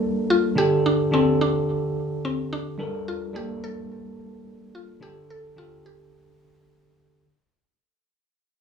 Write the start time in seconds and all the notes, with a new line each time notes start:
Already playing: G3 A#3 D4 A4 A#4
0.30 F4
0.56 D3 D4 G4 A4
0.86 D4
1.11 D3 C4 D4 G4 A4
1.41 D4
2.25 C4
2.53 D4
2.78 G3 D4 A4 A#4
3.08 F4
3.33 G3 A#3 D4 G4 A4
3.64 A4
4.75 F4
5.00 D3 D4 G4 A4
5.30 A4
5.56 D3 D4 F4 G4 A4
5.86 G4